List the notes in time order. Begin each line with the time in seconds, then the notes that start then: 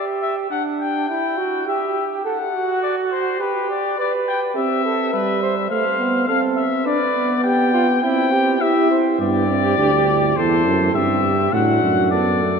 Already playing: G4
0.22 E5
0.51 D4 F#5
0.80 G5
1.08 E4 G5
1.38 F#4
1.67 G4 E5
2.25 A4 F#5
2.54 F#4
2.83 D5
3.12 C5
3.40 G4 B4
3.70 D5
3.98 B4 D5
4.28 G5
4.56 C4 G4 E5
4.85 A4
5.13 G3 B4 E5
5.42 C5
5.70 A3 C5 F5
5.99 B3
6.28 C4 A4 F5
6.56 E5
6.85 D4 B4 D5
7.15 B3
7.44 G4 G5
7.74 F4
8.02 C4 E4 G5
8.32 G4
8.60 E4 G4 E5
8.91 C5
9.19 G2 B3 G4 D5
9.48 C4
9.77 D2 D4
10.07 E4
10.36 E2 E4 A4 C5
10.65 F#2
10.94 G2 C4 G4 E5
11.53 A2 D4 F#4 F#5
11.83 F#2
12.10 B3 A4 D5
12.42 A3